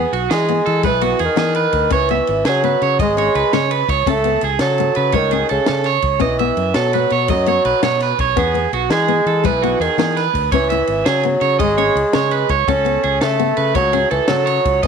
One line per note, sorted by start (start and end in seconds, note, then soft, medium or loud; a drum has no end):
0.00 0.13 B3 loud
0.00 0.17 B3 medium
0.00 0.11 G#4 medium
0.13 0.27 B1 medium
0.13 0.30 F#4 medium
0.13 ride medium
0.30 0.60 E3 loud
0.30 0.88 G#3 medium
0.30 0.64 G#4 medium
0.30 snare medium
0.30 ride medium
0.48 0.70 B3 medium
0.48 ride soft
0.66 0.85 E3 medium
0.66 0.83 A4 medium
0.66 ride soft
0.83 1.13 B1 loud
0.83 1.21 E3 medium
0.83 0.94 G#3 medium
0.83 1.01 B4 medium
0.83 kick medium
0.83 ride medium
1.01 1.23 B3 medium
1.01 1.19 F#4 medium
1.01 ride medium
1.19 1.27 E2 medium
1.19 1.37 G#4 medium
1.19 ride medium
1.24 1.94 D#3 medium
1.36 1.66 E3 loud
1.36 1.57 B3 medium
1.36 1.55 G#4 medium
1.36 snare medium
1.36 ride medium
1.55 1.90 B4 medium
1.55 ride medium
1.73 1.88 D2 loud
1.73 kick medium
1.73 ride medium
1.90 2.20 C#2 medium
1.90 2.46 E3 medium
1.90 2.01 C#4 medium
1.90 2.09 C#5 medium
1.90 kick medium
1.90 ride medium
2.09 2.31 B3 medium
2.09 2.44 E5 medium
2.09 ride soft
2.27 2.43 G#1 medium
2.27 ride soft
2.45 2.75 C#3 medium
2.45 2.97 F#3 medium
2.45 2.63 G#4 medium
2.45 snare medium
2.45 ride medium
2.64 2.84 B3 medium
2.64 2.81 B4 medium
2.64 ride soft
2.82 3.01 C#3 medium
2.82 2.99 C#5 medium
2.82 ride soft
2.99 3.28 G#1 loud
2.99 3.11 G#3 medium
2.99 3.86 G#3 medium
2.99 3.16 D#5 medium
2.99 kick medium
2.99 ride medium
3.17 3.38 C#4 medium
3.17 3.35 C#5 medium
3.17 ride medium
3.35 3.42 C#2 loud
3.35 3.52 B4 medium
3.35 ride soft
3.53 3.82 C#3 loud
3.53 3.74 C#4 medium
3.53 3.70 C#5 medium
3.53 snare medium
3.53 ride medium
3.71 3.88 B4 medium
3.71 ride medium
3.88 4.03 C#2 loud
3.88 4.06 C#5 medium
3.88 kick medium
3.88 ride medium
4.06 4.36 C#2 medium
4.06 4.41 A3 medium
4.06 4.17 C#4 loud
4.06 4.42 A4 medium
4.06 kick medium
4.06 ride medium
4.24 4.46 B3 medium
4.24 ride medium
4.41 4.57 C#2 medium
4.41 4.60 G#4 medium
4.41 ride medium
4.59 4.89 C#3 loud
4.59 5.17 F#3 medium
4.59 4.95 A4 medium
4.59 snare medium
4.59 ride medium
4.78 muted nylon-string guitar stroke medium
4.78 ride soft
4.95 5.15 C#3 medium
4.95 5.13 B4 medium
4.95 ride medium
5.12 5.43 C#2 medium
5.12 5.51 D#3 loud
5.12 5.25 A3 medium
5.12 5.31 C#5 medium
5.12 kick medium
5.12 ride medium
5.31 5.53 C#4 medium
5.31 5.49 G#4 medium
5.31 ride medium
5.49 5.58 C#2 loud
5.49 5.92 C#3 medium
5.49 5.67 A4 medium
5.49 ride soft
5.66 5.98 C#3 loud
5.66 5.88 C#4 medium
5.66 5.85 A4 medium
5.66 snare medium
5.66 ride medium
5.84 6.20 C#5 medium
5.84 snare soft
5.84 ride medium
6.02 6.18 C#2 loud
6.02 kick medium
6.02 ride medium
6.20 6.50 B1 medium
6.20 6.77 E3 medium
6.20 6.31 C#4 medium
6.20 6.39 D#5 loud
6.20 kick medium
6.20 ride medium
6.39 6.61 B3 medium
6.39 6.74 E5 medium
6.39 ride soft
6.57 6.72 F#2 medium
6.57 ride soft
6.74 7.05 B2 loud
6.74 7.29 F#3 medium
6.74 6.93 A4 medium
6.74 snare medium
6.74 ride medium
6.93 7.15 B3 medium
6.93 7.11 B4 medium
6.93 ride medium
7.10 7.31 B2 medium
7.10 7.29 C#5 medium
7.10 ride soft
7.28 7.58 F#2 medium
7.28 8.16 F#3 loud
7.28 7.40 A3 medium
7.28 7.47 D#5 medium
7.28 kick medium
7.28 ride medium
7.46 7.68 B3 medium
7.46 7.65 C#5 medium
7.46 ride medium
7.65 7.73 B1 medium
7.65 7.83 B4 medium
7.65 ride medium
7.83 8.12 B2 medium
7.83 8.04 B3 medium
7.83 8.01 C#5 medium
7.83 snare medium
7.83 ride medium
8.00 8.19 B4 medium
8.00 snare soft
8.00 ride medium
8.18 8.33 B1 loud
8.18 8.37 C#5 medium
8.18 kick medium
8.18 ride medium
8.36 8.66 E2 medium
8.36 8.70 B3 loud
8.36 8.47 C#4 medium
8.36 8.72 G#4 medium
8.36 kick medium
8.36 ride medium
8.54 8.75 B3 medium
8.54 ride soft
8.73 8.87 B1 medium
8.73 8.91 F#4 medium
8.73 ride soft
8.90 9.19 E3 loud
8.90 9.47 G#3 loud
8.90 9.26 G#4 medium
8.90 snare medium
8.90 ride medium
9.08 9.29 B3 medium
9.08 ride soft
9.26 9.46 E3 medium
9.26 9.44 A4 medium
9.26 ride soft
9.44 9.74 B1 medium
9.44 9.82 E3 medium
9.44 9.54 G#3 medium
9.44 9.62 B4 medium
9.44 kick medium
9.44 ride medium
9.62 9.84 B3 medium
9.62 9.80 F#4 medium
9.62 ride soft
9.80 9.87 E2 medium
9.80 10.26 D#3 medium
9.80 9.98 G#4 medium
9.80 ride medium
9.98 10.27 E3 medium
9.98 10.19 B3 medium
9.98 10.16 G#4 medium
9.98 snare medium
9.98 ride medium
10.17 10.51 B4 medium
10.17 snare soft
10.17 ride medium
10.34 10.48 D2 medium
10.34 kick medium
10.34 ride medium
10.52 10.81 C#2 medium
10.52 11.08 E3 loud
10.52 10.64 C#4 medium
10.52 10.69 C#5 medium
10.52 kick medium
10.52 ride medium
10.70 10.92 E4 medium
10.70 11.04 E5 medium
10.70 ride medium
10.87 11.03 G#1 medium
10.87 ride medium
11.06 11.36 C#3 loud
11.06 11.61 F#3 loud
11.06 11.23 G#4 medium
11.06 snare medium
11.06 ride medium
11.23 11.46 B3 medium
11.23 ride soft
11.41 11.61 C#3 medium
11.41 11.59 C#5 medium
11.41 ride soft
11.59 11.89 G#1 loud
11.59 11.70 G#3 medium
11.59 12.50 G#3 loud
11.59 11.77 D#5 medium
11.59 kick loud
11.59 ride medium
11.78 11.99 C#4 medium
11.78 11.95 C#5 medium
11.78 ride medium
11.95 12.03 C#2 medium
11.95 ride medium
12.13 12.44 C#3 loud
12.13 12.34 C#4 medium
12.13 12.31 C#5 medium
12.13 snare loud
12.13 ride medium
12.31 12.49 B4 medium
12.31 ride medium
12.49 12.64 C#2 loud
12.49 12.67 C#5 medium
12.49 kick medium
12.49 ride medium
12.67 12.96 C#2 medium
12.67 12.79 C#4 medium
12.67 13.24 C#4 loud
12.67 13.02 A4 medium
12.67 kick medium
12.67 ride medium
12.85 13.06 B3 medium
12.85 ride soft
13.03 13.18 C#2 medium
13.03 13.20 G#4 medium
13.03 ride medium
13.21 13.51 C#3 loud
13.21 13.75 A3 loud
13.21 13.56 A4 medium
13.21 snare medium
13.21 ride medium
13.39 13.60 B3 medium
13.39 ride soft
13.57 13.76 C#3 medium
13.57 13.74 B4 medium
13.57 ride medium
13.75 14.04 C#2 medium
13.75 14.09 F#3 loud
13.75 13.85 A3 medium
13.75 13.93 C#5 medium
13.75 kick medium
13.75 ride medium
13.93 14.14 C#4 medium
13.93 14.10 G#4 medium
13.93 ride medium
14.11 14.19 C#2 loud
14.11 14.28 E3 medium
14.11 14.27 A4 medium
14.11 ride medium
14.28 14.58 C#3 medium
14.28 14.86 F#3 loud
14.28 14.51 C#4 medium
14.28 14.46 A4 medium
14.28 snare medium
14.28 ride medium
14.46 14.81 C#5 medium
14.46 ride medium
14.65 14.80 C#2 loud
14.65 kick medium
14.65 ride medium
14.83 14.87 B1 medium
14.83 14.87 D#5 medium
14.83 kick medium
14.83 ride medium